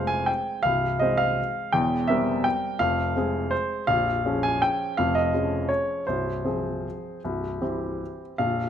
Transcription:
grand piano
Already playing: F1 F2 G#3 C4 C5 F5
0.07 G#5
0.26 G5
0.63 C1 C2 F5
0.99 G#3 C4 C5 D#5
1.17 F5
1.72 E1 E2 G5
2.08 G3 C4 A#4 E5
2.44 G5
2.79 F1 F2 F5
3.16 G#3 C4 G#4
3.51 C5
3.87 A#0 A#1 F5
4.26 F3 C#4 G#4
4.43 G#5
4.62 G5
4.97 F1 F2 F5
5.15 D#5
5.34 F3 C#4 G#4
5.69 C#5
6.07 C1 C2 C5
6.45 F3 C4 G#4
7.25 C1 C2
7.61 E3 C4 G4
8.38 A#0 A#1 F5

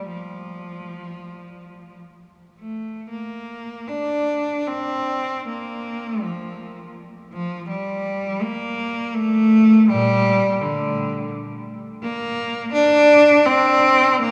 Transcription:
cello
0.08 F3
2.59 A3
3.10 A#3
3.88 D4
4.67 C4
5.47 A#3
6.23 F3
7.33 F3
7.69 G3
8.42 A#3
9.14 A3
9.90 A#2 G3
10.62 D3
12.03 A#3
12.73 D4
13.46 C4
14.22 A#3

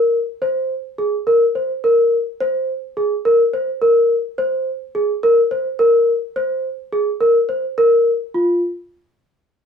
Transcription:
celesta
Already playing: A#4
0.42 C5
0.98 G#4
1.27 A#4
1.55 C5
1.84 A#4
2.40 C5
2.97 G#4
3.25 A#4
3.54 C5
3.82 A#4
4.38 C5
4.95 G#4
5.23 A#4
5.51 C5
5.79 A#4
6.36 C5
6.93 G#4
7.21 A#4
7.49 C5
7.78 A#4
8.34 F4

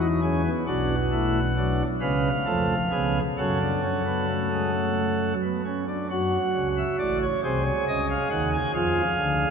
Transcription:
pipe organ
Already playing: E2 E3
0.01 D#4
0.22 C#4 G#4
0.45 B3
0.67 B1 B2 D4 F#4 F#5
1.12 A3 E4
1.57 F#3 D4
2.01 C#2 C#3 G#3 B4 F5
2.46 F2 F3 A3 A4
2.91 C#2 C#3 B3 G#4
3.38 F#2 F#3 C#4 A4 F#5
3.61 D4
3.83 C#4
4.06 B3
4.29 A3
4.52 G#3
4.75 A3
5.42 B3
5.65 C#4
5.88 D4
6.10 F#2 F#3 F#4 F#5
6.56 C#2 C#3
6.77 E5
6.99 A1 A2 D5
7.22 C#5
7.43 C2 C3 G#4 C5
7.65 C#5
7.88 C#2 C#3 D#5
8.10 F5
8.30 D#2 D#3 F#5
8.53 G#5
8.74 F2 F3 G#4 F5
9.18 D2 D3

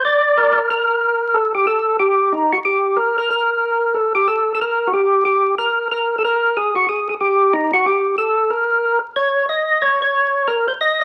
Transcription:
tonewheel organ
0.05 D5
0.37 A#4
0.70 A#4
1.34 A4
1.55 G4
1.67 A4
1.99 G4
2.32 D#4
2.53 F#4
2.65 G4
2.97 A#4
3.18 A#4
3.30 A#4
3.94 A4
4.15 G4
4.28 A4
4.55 A4
4.61 A#4
4.87 F#4
4.93 G4
5.25 G4
5.58 A#4
5.91 A#4
6.18 A4
6.24 A#4
6.57 G#4
6.75 F#4
6.89 G#4
7.09 G#4
7.21 G4
7.53 D#4
7.73 F#4
7.86 G4
8.18 A4
8.50 A#4
9.16 C#5
9.49 D#5
9.82 C#5
10.02 C#5
10.48 A#4
10.68 C5
10.81 D#5

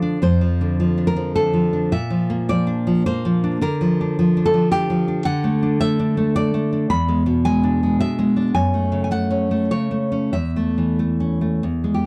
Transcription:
nylon-string guitar
Already playing: D3 F3 D5
0.02 D4
0.22 F2 C5
0.41 F3
0.61 D3
0.80 F3
0.98 D4
1.07 A#4
1.16 F3
1.36 D3 A4
1.53 F3
1.73 D4
1.92 A#2 E5
2.10 F3
2.30 A#3
2.49 F3 D5
2.67 D4
2.87 F3
3.06 A#3 C5
3.25 F3
3.44 D4
3.61 D3 A#4
3.81 F3
4.01 D4
4.19 F3
4.37 D4
4.46 A4
4.54 F3
4.71 D4 G4
4.90 F3
5.08 D4
5.25 D3 F#5
5.44 A3
5.63 D4
5.80 A3 E5
5.99 D4
6.17 A3
6.35 D4 D5
6.54 A3
6.73 D4
6.90 E2 B5
7.08 G#3
7.26 B2
7.45 G#3 G#5
7.63 D4
7.83 G#3
8.00 B2 E5
8.19 G#3
8.36 D4
8.54 F#2 G#5
8.74 A3
8.92 C#3
9.04 G#5
9.11 A3 F#5
9.31 C#4
9.51 A3
9.71 C#3 C#5
9.91 A3
10.12 C#4
10.33 E2 E5
10.56 A3
10.78 E3
10.99 A3
11.20 C#4
11.41 A3
11.63 E2
11.84 G#3
11.94 G4

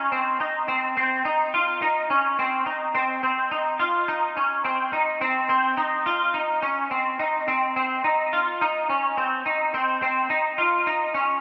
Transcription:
clean electric guitar
Already playing: C#4
0.12 C4
0.40 D#4
0.68 C4
0.97 C4
1.25 D#4
1.54 F4
1.82 D#4
2.10 C#4
2.39 C4
2.66 D#4
2.95 C4
3.23 C4
3.51 D#4
3.79 F4
4.08 D#4
4.37 C#4
4.64 C4
4.93 D#4
5.21 C4
5.49 C4
5.77 D#4
6.06 F4
6.34 D#4
6.62 C#4
6.91 C4
7.19 D#4
7.48 C4
7.76 C4
8.04 D#4
8.33 F4
8.61 D#4
8.89 C#4
9.17 C4
9.46 D#4
9.74 C4
10.02 C4
10.30 D#4
10.58 F4
10.87 D#4
11.14 C#4

